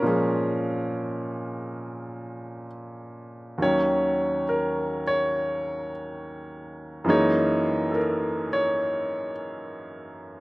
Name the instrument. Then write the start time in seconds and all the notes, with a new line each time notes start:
grand piano
Already playing: C#4 A#4 C#5 F5
0.02 A#2 F3 G#3
0.07 C#4
3.58 D#2 D#3 F#3
3.62 C#4 C#5
4.49 A#4
5.07 C#5
7.04 F#2 E3 G#3 A#3
7.09 D#4 C#5
7.91 A4
7.95 A#4
8.53 C#5